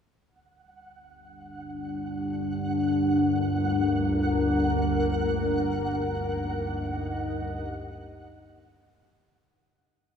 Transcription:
0.20 G1 D2 G3 F#5
1.12 D4
2.28 A4 A#4
5.53 D#4
6.08 D#5
6.94 G4

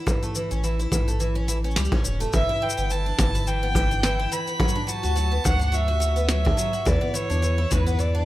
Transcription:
0.07 E3, kick, cabasa
0.23 A3, cabasa
0.35 E3, cabasa
0.51 A1 C#4, cabasa
0.64 E3, cabasa
0.79 E4, cabasa
0.92 A1 E3, kick, cabasa
1.08 A3, cabasa
1.20 E3, cabasa
1.35 C#4
1.48 E3, cabasa
1.64 C#4, cabasa
1.71 cabasa
1.76 C#2 G3, snare, cabasa
1.85 cabasa
1.92 C#4, kick
2.04 E1 C#4, cabasa
2.20 A3, cabasa
2.33 G1 E3 E5, kick, cabasa
2.49 E4
2.62 E3 G5
2.70 cabasa
2.78 G1 B3, cabasa
2.90 E3 A5, cabasa
3.06 D4
3.19 G1 E3, kick, snare, cabasa
3.35 E4, cabasa
3.47 E3 G5, cabasa
3.63 B3
3.75 E3, kick, cabasa
3.91 D4, cabasa
4.03 E3, snare, cabasa
4.20 E4
4.32 E3 B5, cabasa
4.47 B3, cabasa
4.60 F#3, kick
4.68 cabasa
4.76 D4
4.87 F#3 A5, cabasa
5.03 D2 F#4, cabasa
5.16 F#3, cabasa
5.32 B3
5.44 D2 F#3 F#5, kick, cabasa
5.60 D4, cabasa
5.72 F#3 E5, cabasa
5.88 F#4
6.00 F#3, cabasa
6.16 B3, cabasa
6.29 F#3 E5, snare, cabasa
6.45 D4, kick
6.57 F#3, cabasa
6.73 F#4, cabasa
6.85 E2 E3 D5, kick, cabasa
7.01 B3
7.14 E3 C#5, cabasa
7.30 E2 D4, cabasa
7.42 E3, cabasa
7.58 E4
7.71 E2 E3 B4, kick, cabasa
7.87 B3, cabasa
7.99 E3 D5, cabasa
8.15 D4

